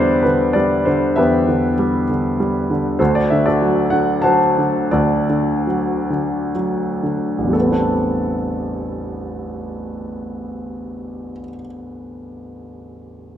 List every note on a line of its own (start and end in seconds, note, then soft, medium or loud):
0.00 1.12 E2 soft
0.00 0.23 D3 soft
0.00 0.54 G3 soft
0.00 0.22 D4 soft
0.00 0.22 G4 soft
0.00 0.25 C5 medium
0.00 0.53 D5 medium
0.00 1.16 E5 medium
0.23 0.85 D3 soft
0.23 0.56 B4 soft
0.53 1.74 G3 soft
0.53 0.87 D5 medium
0.85 1.47 D3 soft
0.85 1.17 C5 medium
1.16 2.96 E2 soft
1.16 2.04 G4 soft
1.16 2.04 B4 soft
1.16 1.73 E5 medium
1.48 2.08 D3 soft
1.79 2.38 G3 soft
2.09 2.69 D3 soft
2.40 2.99 G3 soft
2.70 2.99 D3 soft
2.99 4.89 D2 soft
2.99 3.46 F#4 soft
2.99 3.46 A4 soft
2.99 3.15 C5 soft
3.15 3.31 D5 medium
3.30 3.91 D3 soft
3.30 3.46 E5 medium
3.46 4.37 F#4 soft
3.46 4.37 A4 soft
3.46 3.93 D5 medium
3.62 4.23 F#3 soft
3.90 4.57 D3 soft
3.90 4.22 F#5 medium
4.22 5.64 F#3 soft
4.22 5.25 C5 soft
4.22 5.25 F#5 soft
4.22 4.87 A5 medium
4.58 5.28 D3 soft
4.91 7.51 D2 soft
4.91 6.51 F#4 soft
4.91 6.51 A4 soft
4.91 6.50 D5 soft
5.30 6.09 D3 soft
5.67 6.54 F#3 soft
6.10 7.02 D3 soft
6.55 7.52 F#3 soft
7.03 7.53 D3 soft
7.38 11.32 A1 soft
7.44 11.38 E2 soft
7.50 11.43 G3 soft
7.50 11.47 A4 soft
7.55 11.49 A3 soft
7.60 11.54 B3 soft
7.66 11.60 C4 soft
7.72 11.65 D4 soft